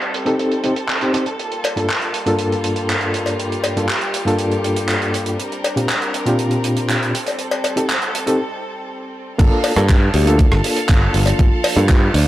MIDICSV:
0, 0, Header, 1, 6, 480
1, 0, Start_track
1, 0, Key_signature, -2, "minor"
1, 0, Tempo, 500000
1, 1336, Time_signature, 4, 2, 24, 8
1, 11785, End_track
2, 0, Start_track
2, 0, Title_t, "Soft synth lead"
2, 0, Program_c, 0, 80
2, 9738, Note_on_c, 0, 67, 99
2, 9899, Note_off_c, 0, 67, 0
2, 10695, Note_on_c, 0, 65, 99
2, 11271, Note_off_c, 0, 65, 0
2, 11304, Note_on_c, 0, 65, 93
2, 11636, Note_off_c, 0, 65, 0
2, 11657, Note_on_c, 0, 62, 89
2, 11734, Note_off_c, 0, 62, 0
2, 11785, End_track
3, 0, Start_track
3, 0, Title_t, "Violin section"
3, 0, Program_c, 1, 48
3, 0, Note_on_c, 1, 55, 66
3, 0, Note_on_c, 1, 60, 65
3, 0, Note_on_c, 1, 69, 75
3, 1312, Note_off_c, 1, 55, 0
3, 1313, Note_off_c, 1, 60, 0
3, 1336, Note_on_c, 1, 58, 62
3, 1337, Note_on_c, 1, 55, 68
3, 1337, Note_on_c, 1, 65, 62
3, 3215, Note_off_c, 1, 69, 0
3, 3256, Note_on_c, 1, 67, 80
3, 5138, Note_off_c, 1, 58, 0
3, 5138, Note_off_c, 1, 65, 0
3, 5157, Note_off_c, 1, 67, 0
3, 5174, Note_on_c, 1, 70, 77
3, 5175, Note_on_c, 1, 62, 63
3, 5176, Note_on_c, 1, 60, 66
3, 6838, Note_off_c, 1, 70, 0
3, 6839, Note_off_c, 1, 62, 0
3, 6855, Note_on_c, 1, 69, 76
3, 8978, Note_off_c, 1, 55, 0
3, 8978, Note_off_c, 1, 60, 0
3, 8994, Note_off_c, 1, 69, 0
3, 9015, Note_on_c, 1, 69, 77
3, 9016, Note_on_c, 1, 77, 70
3, 11785, Note_off_c, 1, 69, 0
3, 11785, Note_off_c, 1, 77, 0
3, 11785, End_track
4, 0, Start_track
4, 0, Title_t, "Reed electric piano"
4, 0, Program_c, 2, 4
4, 246, Note_on_c, 2, 60, 85
4, 252, Note_on_c, 2, 63, 77
4, 253, Note_on_c, 2, 67, 78
4, 257, Note_on_c, 2, 69, 93
4, 587, Note_off_c, 2, 60, 0
4, 590, Note_off_c, 2, 63, 0
4, 591, Note_off_c, 2, 67, 0
4, 592, Note_off_c, 2, 69, 0
4, 615, Note_on_c, 2, 60, 70
4, 618, Note_on_c, 2, 63, 62
4, 619, Note_on_c, 2, 67, 61
4, 624, Note_on_c, 2, 72, 78
4, 700, Note_off_c, 2, 60, 0
4, 701, Note_off_c, 2, 63, 0
4, 702, Note_off_c, 2, 67, 0
4, 704, Note_off_c, 2, 72, 0
4, 972, Note_on_c, 2, 60, 72
4, 975, Note_on_c, 2, 63, 65
4, 979, Note_on_c, 2, 67, 68
4, 980, Note_on_c, 2, 72, 79
4, 1065, Note_off_c, 2, 60, 0
4, 1067, Note_off_c, 2, 63, 0
4, 1068, Note_off_c, 2, 67, 0
4, 1069, Note_off_c, 2, 72, 0
4, 1092, Note_on_c, 2, 60, 73
4, 1096, Note_on_c, 2, 63, 67
4, 1100, Note_on_c, 2, 67, 66
4, 1102, Note_on_c, 2, 72, 80
4, 1178, Note_off_c, 2, 60, 0
4, 1180, Note_off_c, 2, 63, 0
4, 1182, Note_off_c, 2, 67, 0
4, 1183, Note_off_c, 2, 72, 0
4, 1691, Note_on_c, 2, 43, 76
4, 1693, Note_on_c, 2, 58, 73
4, 1696, Note_on_c, 2, 62, 70
4, 1697, Note_on_c, 2, 65, 68
4, 1700, Note_on_c, 2, 69, 84
4, 1777, Note_off_c, 2, 43, 0
4, 1779, Note_off_c, 2, 58, 0
4, 1780, Note_off_c, 2, 62, 0
4, 1781, Note_off_c, 2, 65, 0
4, 1782, Note_off_c, 2, 69, 0
4, 2168, Note_on_c, 2, 43, 82
4, 2173, Note_on_c, 2, 58, 80
4, 2176, Note_on_c, 2, 62, 79
4, 2183, Note_on_c, 2, 65, 78
4, 2186, Note_on_c, 2, 69, 97
4, 3583, Note_off_c, 2, 43, 0
4, 3586, Note_off_c, 2, 58, 0
4, 3587, Note_off_c, 2, 62, 0
4, 3591, Note_off_c, 2, 65, 0
4, 3592, Note_off_c, 2, 69, 0
4, 3613, Note_on_c, 2, 43, 77
4, 3617, Note_on_c, 2, 62, 71
4, 3618, Note_on_c, 2, 58, 72
4, 3621, Note_on_c, 2, 65, 71
4, 3625, Note_on_c, 2, 69, 82
4, 3699, Note_off_c, 2, 43, 0
4, 3701, Note_off_c, 2, 58, 0
4, 3701, Note_off_c, 2, 62, 0
4, 3703, Note_off_c, 2, 65, 0
4, 3705, Note_off_c, 2, 69, 0
4, 4084, Note_on_c, 2, 43, 89
4, 4089, Note_on_c, 2, 58, 81
4, 4095, Note_on_c, 2, 62, 80
4, 4100, Note_on_c, 2, 65, 82
4, 4103, Note_on_c, 2, 69, 95
4, 5155, Note_off_c, 2, 43, 0
4, 5158, Note_off_c, 2, 58, 0
4, 5161, Note_off_c, 2, 62, 0
4, 5163, Note_off_c, 2, 65, 0
4, 5165, Note_off_c, 2, 69, 0
4, 5530, Note_on_c, 2, 46, 80
4, 5534, Note_on_c, 2, 60, 71
4, 5536, Note_on_c, 2, 62, 72
4, 5537, Note_on_c, 2, 65, 72
4, 5538, Note_on_c, 2, 67, 83
4, 5617, Note_off_c, 2, 46, 0
4, 5619, Note_off_c, 2, 60, 0
4, 5620, Note_off_c, 2, 62, 0
4, 5621, Note_off_c, 2, 65, 0
4, 5621, Note_off_c, 2, 67, 0
4, 6006, Note_on_c, 2, 46, 89
4, 6012, Note_on_c, 2, 60, 83
4, 6017, Note_on_c, 2, 62, 83
4, 6019, Note_on_c, 2, 65, 81
4, 6026, Note_on_c, 2, 67, 94
4, 6836, Note_off_c, 2, 46, 0
4, 6839, Note_off_c, 2, 60, 0
4, 6842, Note_off_c, 2, 62, 0
4, 6843, Note_off_c, 2, 65, 0
4, 6846, Note_off_c, 2, 67, 0
4, 7451, Note_on_c, 2, 60, 80
4, 7457, Note_on_c, 2, 63, 73
4, 7457, Note_on_c, 2, 67, 72
4, 7463, Note_on_c, 2, 69, 88
4, 7538, Note_off_c, 2, 60, 0
4, 7541, Note_off_c, 2, 63, 0
4, 7541, Note_off_c, 2, 67, 0
4, 7544, Note_off_c, 2, 69, 0
4, 7934, Note_on_c, 2, 60, 90
4, 7937, Note_on_c, 2, 63, 79
4, 7939, Note_on_c, 2, 67, 84
4, 7943, Note_on_c, 2, 69, 100
4, 8055, Note_off_c, 2, 60, 0
4, 8057, Note_off_c, 2, 63, 0
4, 8057, Note_off_c, 2, 67, 0
4, 8059, Note_off_c, 2, 69, 0
4, 9009, Note_on_c, 2, 58, 99
4, 9013, Note_on_c, 2, 62, 91
4, 9017, Note_on_c, 2, 65, 91
4, 9021, Note_on_c, 2, 69, 110
4, 9324, Note_off_c, 2, 58, 0
4, 9326, Note_off_c, 2, 62, 0
4, 9328, Note_off_c, 2, 65, 0
4, 9331, Note_off_c, 2, 69, 0
4, 9372, Note_on_c, 2, 58, 88
4, 9375, Note_on_c, 2, 62, 80
4, 9379, Note_on_c, 2, 65, 80
4, 9380, Note_on_c, 2, 69, 94
4, 9458, Note_off_c, 2, 58, 0
4, 9460, Note_off_c, 2, 62, 0
4, 9462, Note_off_c, 2, 65, 0
4, 9462, Note_off_c, 2, 69, 0
4, 9845, Note_on_c, 2, 58, 93
4, 9851, Note_on_c, 2, 62, 91
4, 9858, Note_on_c, 2, 65, 92
4, 9863, Note_on_c, 2, 69, 105
4, 11262, Note_off_c, 2, 58, 0
4, 11265, Note_off_c, 2, 62, 0
4, 11268, Note_off_c, 2, 65, 0
4, 11271, Note_off_c, 2, 69, 0
4, 11291, Note_on_c, 2, 58, 86
4, 11291, Note_on_c, 2, 62, 82
4, 11295, Note_on_c, 2, 65, 81
4, 11299, Note_on_c, 2, 69, 92
4, 11378, Note_off_c, 2, 58, 0
4, 11378, Note_off_c, 2, 62, 0
4, 11380, Note_off_c, 2, 65, 0
4, 11381, Note_off_c, 2, 69, 0
4, 11785, End_track
5, 0, Start_track
5, 0, Title_t, "Picked electric bass"
5, 0, Program_c, 3, 34
5, 9020, Note_on_c, 3, 31, 95
5, 9100, Note_off_c, 3, 31, 0
5, 9374, Note_on_c, 3, 43, 91
5, 9674, Note_off_c, 3, 43, 0
5, 9734, Note_on_c, 3, 38, 87
5, 10034, Note_off_c, 3, 38, 0
5, 10096, Note_on_c, 3, 31, 98
5, 10178, Note_off_c, 3, 31, 0
5, 10458, Note_on_c, 3, 31, 94
5, 10620, Note_off_c, 3, 31, 0
5, 10696, Note_on_c, 3, 31, 78
5, 10860, Note_off_c, 3, 31, 0
5, 10936, Note_on_c, 3, 31, 98
5, 11018, Note_off_c, 3, 31, 0
5, 11295, Note_on_c, 3, 43, 92
5, 11594, Note_off_c, 3, 43, 0
5, 11654, Note_on_c, 3, 38, 89
5, 11785, Note_off_c, 3, 38, 0
5, 11785, End_track
6, 0, Start_track
6, 0, Title_t, "Drums"
6, 15, Note_on_c, 9, 42, 39
6, 111, Note_off_c, 9, 42, 0
6, 137, Note_on_c, 9, 42, 86
6, 233, Note_off_c, 9, 42, 0
6, 251, Note_on_c, 9, 42, 54
6, 347, Note_off_c, 9, 42, 0
6, 379, Note_on_c, 9, 42, 61
6, 475, Note_off_c, 9, 42, 0
6, 495, Note_on_c, 9, 42, 42
6, 591, Note_off_c, 9, 42, 0
6, 611, Note_on_c, 9, 42, 73
6, 707, Note_off_c, 9, 42, 0
6, 733, Note_on_c, 9, 42, 57
6, 829, Note_off_c, 9, 42, 0
6, 849, Note_on_c, 9, 39, 94
6, 855, Note_on_c, 9, 42, 57
6, 945, Note_off_c, 9, 39, 0
6, 951, Note_off_c, 9, 42, 0
6, 974, Note_on_c, 9, 42, 37
6, 980, Note_on_c, 9, 39, 31
6, 1070, Note_off_c, 9, 42, 0
6, 1076, Note_off_c, 9, 39, 0
6, 1095, Note_on_c, 9, 42, 91
6, 1191, Note_off_c, 9, 42, 0
6, 1211, Note_on_c, 9, 42, 51
6, 1307, Note_off_c, 9, 42, 0
6, 1339, Note_on_c, 9, 42, 59
6, 1435, Note_off_c, 9, 42, 0
6, 1456, Note_on_c, 9, 42, 39
6, 1552, Note_off_c, 9, 42, 0
6, 1574, Note_on_c, 9, 42, 91
6, 1581, Note_on_c, 9, 56, 82
6, 1670, Note_off_c, 9, 42, 0
6, 1677, Note_off_c, 9, 56, 0
6, 1700, Note_on_c, 9, 42, 55
6, 1796, Note_off_c, 9, 42, 0
6, 1810, Note_on_c, 9, 42, 51
6, 1820, Note_on_c, 9, 39, 93
6, 1906, Note_off_c, 9, 42, 0
6, 1916, Note_off_c, 9, 39, 0
6, 1934, Note_on_c, 9, 42, 36
6, 2030, Note_off_c, 9, 42, 0
6, 2054, Note_on_c, 9, 42, 78
6, 2150, Note_off_c, 9, 42, 0
6, 2175, Note_on_c, 9, 42, 57
6, 2271, Note_off_c, 9, 42, 0
6, 2291, Note_on_c, 9, 42, 60
6, 2387, Note_off_c, 9, 42, 0
6, 2423, Note_on_c, 9, 42, 37
6, 2519, Note_off_c, 9, 42, 0
6, 2534, Note_on_c, 9, 42, 84
6, 2630, Note_off_c, 9, 42, 0
6, 2650, Note_on_c, 9, 42, 50
6, 2746, Note_off_c, 9, 42, 0
6, 2780, Note_on_c, 9, 42, 61
6, 2783, Note_on_c, 9, 39, 105
6, 2876, Note_off_c, 9, 42, 0
6, 2879, Note_off_c, 9, 39, 0
6, 2888, Note_on_c, 9, 42, 36
6, 2984, Note_off_c, 9, 42, 0
6, 3015, Note_on_c, 9, 42, 79
6, 3111, Note_off_c, 9, 42, 0
6, 3129, Note_on_c, 9, 56, 53
6, 3141, Note_on_c, 9, 42, 52
6, 3225, Note_off_c, 9, 56, 0
6, 3237, Note_off_c, 9, 42, 0
6, 3259, Note_on_c, 9, 42, 61
6, 3355, Note_off_c, 9, 42, 0
6, 3381, Note_on_c, 9, 42, 39
6, 3477, Note_off_c, 9, 42, 0
6, 3491, Note_on_c, 9, 56, 75
6, 3494, Note_on_c, 9, 42, 83
6, 3587, Note_off_c, 9, 56, 0
6, 3590, Note_off_c, 9, 42, 0
6, 3619, Note_on_c, 9, 42, 60
6, 3715, Note_off_c, 9, 42, 0
6, 3731, Note_on_c, 9, 39, 97
6, 3742, Note_on_c, 9, 42, 53
6, 3827, Note_off_c, 9, 39, 0
6, 3838, Note_off_c, 9, 42, 0
6, 3851, Note_on_c, 9, 42, 35
6, 3947, Note_off_c, 9, 42, 0
6, 3974, Note_on_c, 9, 42, 92
6, 4070, Note_off_c, 9, 42, 0
6, 4105, Note_on_c, 9, 42, 55
6, 4201, Note_off_c, 9, 42, 0
6, 4210, Note_on_c, 9, 42, 62
6, 4306, Note_off_c, 9, 42, 0
6, 4334, Note_on_c, 9, 42, 37
6, 4430, Note_off_c, 9, 42, 0
6, 4458, Note_on_c, 9, 42, 77
6, 4554, Note_off_c, 9, 42, 0
6, 4574, Note_on_c, 9, 42, 60
6, 4670, Note_off_c, 9, 42, 0
6, 4691, Note_on_c, 9, 39, 102
6, 4699, Note_on_c, 9, 42, 55
6, 4787, Note_off_c, 9, 39, 0
6, 4795, Note_off_c, 9, 42, 0
6, 4818, Note_on_c, 9, 42, 35
6, 4914, Note_off_c, 9, 42, 0
6, 4936, Note_on_c, 9, 42, 87
6, 5032, Note_off_c, 9, 42, 0
6, 5051, Note_on_c, 9, 42, 61
6, 5147, Note_off_c, 9, 42, 0
6, 5180, Note_on_c, 9, 42, 60
6, 5276, Note_off_c, 9, 42, 0
6, 5300, Note_on_c, 9, 42, 36
6, 5396, Note_off_c, 9, 42, 0
6, 5418, Note_on_c, 9, 56, 74
6, 5420, Note_on_c, 9, 42, 92
6, 5514, Note_off_c, 9, 56, 0
6, 5516, Note_off_c, 9, 42, 0
6, 5542, Note_on_c, 9, 42, 66
6, 5638, Note_off_c, 9, 42, 0
6, 5654, Note_on_c, 9, 39, 104
6, 5666, Note_on_c, 9, 42, 58
6, 5750, Note_off_c, 9, 39, 0
6, 5762, Note_off_c, 9, 42, 0
6, 5779, Note_on_c, 9, 42, 39
6, 5875, Note_off_c, 9, 42, 0
6, 5897, Note_on_c, 9, 42, 86
6, 5993, Note_off_c, 9, 42, 0
6, 6014, Note_on_c, 9, 42, 57
6, 6110, Note_off_c, 9, 42, 0
6, 6133, Note_on_c, 9, 42, 63
6, 6229, Note_off_c, 9, 42, 0
6, 6248, Note_on_c, 9, 42, 39
6, 6344, Note_off_c, 9, 42, 0
6, 6375, Note_on_c, 9, 42, 82
6, 6471, Note_off_c, 9, 42, 0
6, 6496, Note_on_c, 9, 42, 59
6, 6592, Note_off_c, 9, 42, 0
6, 6619, Note_on_c, 9, 39, 103
6, 6620, Note_on_c, 9, 42, 61
6, 6715, Note_off_c, 9, 39, 0
6, 6716, Note_off_c, 9, 42, 0
6, 6746, Note_on_c, 9, 42, 41
6, 6842, Note_off_c, 9, 42, 0
6, 6862, Note_on_c, 9, 42, 91
6, 6958, Note_off_c, 9, 42, 0
6, 6975, Note_on_c, 9, 42, 55
6, 6987, Note_on_c, 9, 56, 49
6, 7071, Note_off_c, 9, 42, 0
6, 7083, Note_off_c, 9, 56, 0
6, 7091, Note_on_c, 9, 42, 65
6, 7187, Note_off_c, 9, 42, 0
6, 7213, Note_on_c, 9, 56, 80
6, 7219, Note_on_c, 9, 42, 38
6, 7309, Note_off_c, 9, 56, 0
6, 7315, Note_off_c, 9, 42, 0
6, 7334, Note_on_c, 9, 56, 76
6, 7339, Note_on_c, 9, 42, 99
6, 7430, Note_off_c, 9, 56, 0
6, 7435, Note_off_c, 9, 42, 0
6, 7459, Note_on_c, 9, 42, 63
6, 7555, Note_off_c, 9, 42, 0
6, 7579, Note_on_c, 9, 39, 107
6, 7582, Note_on_c, 9, 42, 62
6, 7675, Note_off_c, 9, 39, 0
6, 7678, Note_off_c, 9, 42, 0
6, 7698, Note_on_c, 9, 42, 37
6, 7794, Note_off_c, 9, 42, 0
6, 7823, Note_on_c, 9, 42, 98
6, 7919, Note_off_c, 9, 42, 0
6, 7941, Note_on_c, 9, 42, 65
6, 8037, Note_off_c, 9, 42, 0
6, 9016, Note_on_c, 9, 42, 70
6, 9019, Note_on_c, 9, 36, 118
6, 9020, Note_on_c, 9, 49, 90
6, 9112, Note_off_c, 9, 42, 0
6, 9115, Note_off_c, 9, 36, 0
6, 9116, Note_off_c, 9, 49, 0
6, 9252, Note_on_c, 9, 46, 99
6, 9252, Note_on_c, 9, 56, 81
6, 9348, Note_off_c, 9, 46, 0
6, 9348, Note_off_c, 9, 56, 0
6, 9373, Note_on_c, 9, 42, 75
6, 9374, Note_on_c, 9, 37, 57
6, 9469, Note_off_c, 9, 42, 0
6, 9470, Note_off_c, 9, 37, 0
6, 9493, Note_on_c, 9, 42, 60
6, 9498, Note_on_c, 9, 36, 121
6, 9498, Note_on_c, 9, 39, 105
6, 9589, Note_off_c, 9, 42, 0
6, 9594, Note_off_c, 9, 36, 0
6, 9594, Note_off_c, 9, 39, 0
6, 9732, Note_on_c, 9, 46, 100
6, 9828, Note_off_c, 9, 46, 0
6, 9862, Note_on_c, 9, 42, 74
6, 9958, Note_off_c, 9, 42, 0
6, 9973, Note_on_c, 9, 42, 70
6, 9977, Note_on_c, 9, 36, 115
6, 10069, Note_off_c, 9, 42, 0
6, 10073, Note_off_c, 9, 36, 0
6, 10096, Note_on_c, 9, 37, 80
6, 10192, Note_off_c, 9, 37, 0
6, 10217, Note_on_c, 9, 46, 106
6, 10313, Note_off_c, 9, 46, 0
6, 10334, Note_on_c, 9, 42, 81
6, 10430, Note_off_c, 9, 42, 0
6, 10452, Note_on_c, 9, 39, 118
6, 10457, Note_on_c, 9, 36, 112
6, 10458, Note_on_c, 9, 42, 73
6, 10548, Note_off_c, 9, 39, 0
6, 10553, Note_off_c, 9, 36, 0
6, 10554, Note_off_c, 9, 42, 0
6, 10696, Note_on_c, 9, 46, 102
6, 10792, Note_off_c, 9, 46, 0
6, 10808, Note_on_c, 9, 56, 60
6, 10818, Note_on_c, 9, 42, 82
6, 10904, Note_off_c, 9, 56, 0
6, 10914, Note_off_c, 9, 42, 0
6, 10936, Note_on_c, 9, 42, 69
6, 10937, Note_on_c, 9, 36, 126
6, 11032, Note_off_c, 9, 42, 0
6, 11033, Note_off_c, 9, 36, 0
6, 11175, Note_on_c, 9, 56, 102
6, 11177, Note_on_c, 9, 46, 121
6, 11271, Note_off_c, 9, 56, 0
6, 11273, Note_off_c, 9, 46, 0
6, 11296, Note_on_c, 9, 42, 82
6, 11392, Note_off_c, 9, 42, 0
6, 11414, Note_on_c, 9, 39, 121
6, 11417, Note_on_c, 9, 42, 69
6, 11418, Note_on_c, 9, 36, 126
6, 11510, Note_off_c, 9, 39, 0
6, 11513, Note_off_c, 9, 42, 0
6, 11514, Note_off_c, 9, 36, 0
6, 11658, Note_on_c, 9, 46, 105
6, 11754, Note_off_c, 9, 46, 0
6, 11785, End_track
0, 0, End_of_file